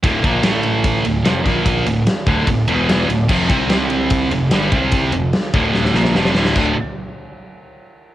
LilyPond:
<<
  \new Staff \with { instrumentName = "Distorted electric guitar" } { \clef bass \time 4/4 \key d \minor \tempo 4 = 147 <d, a, d>8 <bes, f bes>8 <a, e a>4. <d, a,>8 <f, c f>8 <bes, f bes>8~ | <bes, f bes>8 <d, a,>8 r8 <d, a, d>8 <d, a,>8 <e, b, e>4 <d, a,>8 | <f, c f>8 <c g c'>8 <c g c'>4. <f, c>8 <g, d g>8 <c g c'>8~ | <c g c'>8 <f, c>8 r8 <d, a, d>4 <bes, f bes>8 <f, c f>8 <d, a, d>8 |
<d, a, d>8 r2. r8 | }
  \new Staff \with { instrumentName = "Overdriven electric guitar" } { \clef bass \time 4/4 \key d \minor <d, a, d>8 <bes, f bes>8 <a, e a>4. <d, a,>8 <f, c f>8 <bes, f bes>8~ | <bes, f bes>8 <d, a,>8 r8 <d, a, d>8 <d, a,>8 <e, b, e>4 <d, a,>8 | <f, c f>8 <c g c'>8 <c g c'>4. <f, c>8 <g, d g>8 <c g c'>8~ | <c g c'>8 <f, c>8 r8 <d, a, d>4 <bes, f bes>8 <f, c f>8 <d, a, d>8 |
<d, a, d>8 r2. r8 | }
  \new Staff \with { instrumentName = "Picked electric bass" } { \clef bass \time 4/4 \key d \minor d,,8 bes,,8 a,,4. d,,8 f,,8 bes,,8~ | bes,,8 d,,8 r8 d,,8 d,,8 e,,4 d,,8 | f,,8 c,8 c,4. f,,8 g,,8 c,8~ | c,8 f,,8 r8 d,,4 bes,,8 f,,8 d,,8 |
d,,8 r2. r8 | }
  \new DrumStaff \with { instrumentName = "Drums" } \drummode { \time 4/4 <bd cymr>8 <bd cymr>8 <cymr sn>8 cymr8 <bd cymr>8 cymr8 <cymr sn>8 <bd cymr>8 | <bd cymr>8 cymr8 <cymr sn>8 <bd cymr>8 <bd cymr>8 cymr8 <cymr sn>8 cymr8 | <cymc bd>8 <bd cymr>8 <cymr sn>8 cymr8 <bd cymr>8 cymr8 <cymr sn>8 <bd cymr>8 | <bd cymr>8 cymr8 <cymr sn>8 <bd cymr>8 sn16 sn16 sn16 sn16 sn16 sn16 sn16 sn16 |
<cymc bd>4 r4 r4 r4 | }
>>